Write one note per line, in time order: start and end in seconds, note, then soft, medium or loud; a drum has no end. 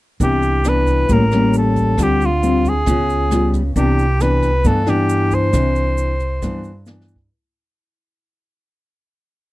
0.20 1.05 C2 loud
0.20 1.07 C3 soft
0.20 0.61 E3 soft
0.20 0.62 B3 soft
0.20 0.62 D4 medium
0.20 0.70 G4 medium
0.20 kick medium
0.20 closed hi-hat medium
0.20 shaker medium
0.42 closed hi-hat soft
0.42 shaker soft
0.64 1.08 E3 medium
0.64 1.08 B3 medium
0.64 1.08 D4 medium
0.64 1.14 B4 loud
0.64 cross-stick medium
0.64 closed hi-hat soft
0.64 shaker medium
0.87 kick soft
0.87 closed hi-hat soft
0.87 shaker soft
1.09 1.94 A1 loud
1.09 1.97 A2 medium
1.09 1.23 G3 medium
1.09 1.23 A#3 soft
1.09 1.23 C#4 medium
1.09 1.55 A#4 medium
1.09 kick medium
1.09 closed hi-hat medium
1.09 shaker medium
1.31 1.96 G3 medium
1.31 1.96 A#3 medium
1.31 1.96 C#4 medium
1.31 cross-stick medium
1.31 closed hi-hat soft
1.31 shaker soft
1.53 closed hi-hat soft
1.53 shaker medium
1.58 2.04 A4 medium
1.76 kick soft
1.76 closed hi-hat soft
1.76 shaker soft
1.98 2.83 D2 loud
1.98 2.86 D3 medium
1.98 2.28 G3 medium
1.98 2.28 C4 soft
1.98 2.28 F4 medium
1.98 kick medium
1.98 cross-stick medium
1.98 closed hi-hat medium
1.98 shaker medium
2.03 2.27 G4 loud
2.20 closed hi-hat soft
2.20 shaker soft
2.26 2.70 F4 medium
2.42 2.71 G3 medium
2.42 2.72 C4 medium
2.42 2.72 F4 medium
2.42 closed hi-hat soft
2.42 shaker medium
2.64 kick soft
2.64 closed hi-hat soft
2.64 shaker soft
2.69 3.56 G#4 medium
2.86 3.72 C#2 loud
2.86 3.74 C#3 medium
2.86 3.28 B3 medium
2.86 3.29 F4 medium
2.86 kick medium
2.86 cross-stick medium
2.86 closed hi-hat medium
2.86 shaker medium
3.09 closed hi-hat soft
3.09 shaker soft
3.31 3.61 G3 medium
3.31 3.62 B3 medium
3.31 3.62 F4 medium
3.31 cross-stick medium
3.31 closed hi-hat soft
3.31 shaker medium
3.53 kick soft
3.53 closed hi-hat soft
3.53 shaker soft
3.76 4.61 C2 loud
3.76 4.63 C3 medium
3.76 4.05 E3 soft
3.76 4.05 B3 medium
3.76 4.05 D4 medium
3.76 4.23 G4 medium
3.76 kick medium
3.76 closed hi-hat soft
3.76 shaker medium
3.98 closed hi-hat soft
3.98 shaker soft
4.20 4.50 E3 soft
4.20 4.50 B3 medium
4.20 4.50 D4 medium
4.20 4.68 B4 loud
4.20 cross-stick soft
4.20 closed hi-hat soft
4.20 shaker medium
4.42 kick soft
4.42 closed hi-hat soft
4.42 shaker soft
4.64 5.49 G2 loud
4.64 5.52 G2 medium
4.64 4.84 E3 medium
4.64 4.84 B3 medium
4.64 4.84 D4 medium
4.64 4.91 A4 medium
4.64 kick medium
4.64 closed hi-hat medium
4.64 shaker medium
4.86 5.50 E3 medium
4.86 5.50 B3 medium
4.86 5.50 D4 medium
4.86 5.36 G4 medium
4.86 cross-stick soft
4.86 closed hi-hat soft
4.86 shaker soft
5.09 closed hi-hat soft
5.09 shaker medium
5.31 6.88 C5 medium
5.31 kick soft
5.31 closed hi-hat soft
5.31 shaker soft
5.53 6.38 C2 loud
5.53 6.40 C3 medium
5.53 6.13 E3 medium
5.53 6.14 D4 medium
5.53 kick medium
5.53 cross-stick medium
5.53 closed hi-hat medium
5.53 shaker medium
5.75 closed hi-hat soft
5.75 shaker soft
5.98 closed hi-hat soft
5.98 shaker medium
6.20 kick soft
6.20 closed hi-hat soft
6.20 shaker soft
6.42 7.29 G2 medium
6.42 7.27 G2 loud
6.42 6.71 E3 medium
6.42 6.71 B3 soft
6.42 6.71 D4 medium
6.42 kick medium
6.42 cross-stick medium
6.42 closed hi-hat medium
6.42 shaker medium
6.64 closed hi-hat soft
6.64 shaker soft
6.86 7.16 E3 medium
6.86 7.16 B3 medium
6.86 7.16 D4 medium
6.86 snare soft
6.86 shaker medium
7.01 snare soft
7.08 shaker soft
7.16 kick medium